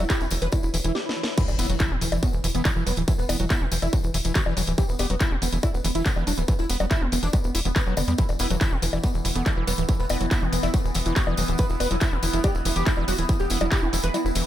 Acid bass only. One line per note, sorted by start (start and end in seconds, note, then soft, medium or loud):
0.10 0.22 E4 loud
0.21 0.26 B3 medium
0.31 0.34 E3 medium
0.42 0.47 E3 medium
0.53 0.56 F#3 medium
0.74 0.77 E3 loud
0.84 0.92 E3 medium
1.38 1.43 E3 loud
1.59 1.67 B3 medium
1.70 1.75 F#3 medium
1.80 1.92 E4 loud
1.91 1.96 B3 medium
2.01 2.05 E3 medium
2.12 2.17 E3 medium
2.23 2.26 F#3 medium
2.44 2.47 E3 loud
2.55 2.63 E3 medium
2.65 2.71 D3 loud
2.76 2.84 E3 medium
2.87 2.92 F#3 medium
2.97 3.02 E3 medium
3.08 3.13 E3 loud
3.29 3.37 B3 medium
3.40 3.45 F#3 medium
3.50 3.63 E4 loud
3.61 3.66 B3 medium
3.72 3.75 E3 medium
3.82 3.88 E3 medium
3.93 3.96 F#3 medium
4.14 4.17 E3 loud
4.25 4.33 E3 medium
4.36 4.41 D3 loud
4.46 4.54 E3 medium
4.57 4.62 F#3 medium
4.67 4.73 E3 medium
4.78 4.83 E3 loud
4.99 5.07 B3 medium
5.10 5.15 F#3 medium
5.21 5.33 E4 loud
5.31 5.37 B3 medium
5.42 5.45 E3 medium
5.53 5.58 E3 medium
5.63 5.66 F#3 medium
5.84 5.88 E3 loud
5.95 6.03 E3 medium
6.06 6.11 D3 loud
6.16 6.24 E3 medium
6.27 6.32 F#3 medium
6.38 6.43 E3 medium
6.48 6.54 E3 loud
6.70 6.77 B3 medium
6.80 6.85 F#3 loud
6.91 7.03 E4 loud
7.01 7.07 B3 medium
7.12 7.15 E3 medium
7.23 7.28 E3 medium
7.33 7.37 F#3 medium
7.55 7.60 E4 medium
7.65 7.68 E3 medium
7.76 7.79 E3 loud
7.87 7.94 F#3 loud
7.97 8.02 D3 loud
8.08 8.13 G3 medium
8.18 8.24 E3 loud
8.40 8.48 B3 medium
8.50 8.56 F#3 medium
8.61 8.73 E4 loud
8.72 8.77 B3 medium
8.82 8.85 E3 medium
8.93 8.98 E3 medium
9.04 9.07 F#3 medium
9.25 9.28 E3 loud
9.35 9.43 E3 medium
9.46 9.49 G3 medium
9.57 9.65 E3 medium
9.67 9.73 F#3 medium
9.78 9.83 E3 medium
9.89 9.94 E3 loud
10.10 10.18 B3 medium
10.21 10.26 F#3 medium
10.31 10.43 E4 loud
10.42 10.47 B3 medium
10.53 10.56 E3 medium
10.63 10.68 E3 medium
10.74 10.77 F#3 medium
10.95 10.98 E3 loud
11.06 11.14 E3 medium
11.16 11.20 G3 medium
11.27 11.35 E3 medium
11.38 11.43 F#3 medium
11.48 11.54 E3 medium
11.59 11.64 E3 loud
11.80 11.88 B3 medium
11.91 11.96 F#3 medium
12.01 12.14 E4 loud
12.12 12.17 B3 medium
12.23 12.26 E3 medium
12.33 12.39 E3 medium
12.44 12.47 F#3 medium
12.65 12.68 E3 loud
12.76 12.84 E3 medium
12.87 12.90 G3 medium
12.97 13.05 E3 medium
13.08 13.13 F#3 medium
13.18 13.24 E3 medium
13.29 13.34 E3 loud
13.50 13.58 B3 medium
13.61 13.66 F#3 loud
13.72 13.84 E4 loud
13.82 13.88 B3 medium
13.93 13.96 E3 medium
14.04 14.09 E3 medium
14.14 14.17 F#3 medium
14.35 14.43 E3 medium